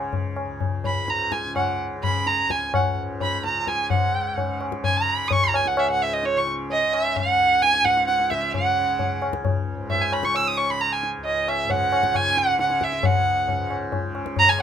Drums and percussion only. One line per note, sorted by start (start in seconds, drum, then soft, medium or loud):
0.13 tabla tin medium
0.13 tabla ge medium
0.36 tabla na medium
0.61 tabla tin medium
0.61 tabla ge medium
0.84 tabla tin medium
0.84 tabla ge medium
1.08 tabla te medium
1.32 tabla ke medium
1.56 tabla na medium
1.56 tabla ge medium
2.03 tabla tin medium
2.03 tabla ge medium
2.26 tabla te medium
2.50 tabla ke medium
2.74 tabla na medium
2.74 tabla ge medium
3.20 tabla tin medium
3.20 tabla ge medium
3.44 tabla te medium
3.67 tabla ke medium
3.90 tabla tin loud
3.90 tabla ge medium
4.38 tabla tin medium
4.38 tabla ge medium
4.61 tabla na medium
4.72 tabla ke medium
4.84 tabla tin medium
4.84 tabla ge medium
5.31 tabla tin medium
5.31 tabla ge medium
5.54 tabla na medium
5.66 tabla ke medium
5.77 tabla na medium
6.23 tabla te medium
6.47 tabla te medium
6.70 tabla tin medium
6.93 tabla na medium
7.16 tabla tin medium
7.16 tabla ge medium
7.62 tabla te medium
7.74 tabla te medium
7.86 tabla ke medium
7.97 tabla te medium
8.08 tabla te medium
8.20 tabla te medium
8.31 tabla ke medium
8.43 tabla te medium
8.54 tabla tin loud
8.54 tabla ge medium
8.99 tabla tin medium
8.99 tabla ge medium
9.22 tabla na medium
9.33 tabla ke medium
9.45 tabla tin medium
9.45 tabla ge medium
9.90 tabla tin medium
9.90 tabla ge medium
10.12 tabla na medium
10.23 tabla ke medium
10.35 tabla na medium
10.58 tabla na medium
10.80 tabla te medium
11.03 tabla te medium
11.25 tabla tin medium
11.48 tabla na medium
11.70 tabla tin medium
11.70 tabla ge medium
11.92 tabla na medium
12.03 tabla ke medium
12.15 tabla na medium
12.15 tabla ge medium
12.37 tabla te medium
12.59 tabla te medium
12.70 tabla te medium
12.81 tabla ke medium
12.92 tabla te medium
13.03 tabla tin loud
13.03 tabla ge medium
13.48 tabla tin medium
13.48 tabla ge medium
13.71 tabla na medium
13.92 tabla tin medium
13.92 tabla ge medium
14.15 tabla na medium
14.26 tabla ke medium
14.36 tabla tin medium
14.36 tabla ge medium
14.59 tabla na medium